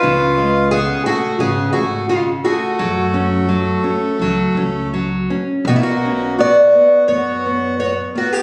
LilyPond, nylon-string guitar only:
\new Staff \with { instrumentName = "Nylon-string guitar" } { \time 4/4 \key fis \minor \tempo 4 = 86 cis8 gis8 cis8 gis'8 cis8 gis'8 cis8 gis'8 | fis8 cis'8 fis8 cis'8 fis8 cis'8 fis8 cis'8 | \key b \minor b,8 cis'8 b8 b8 b8 b8 b8 b8 | }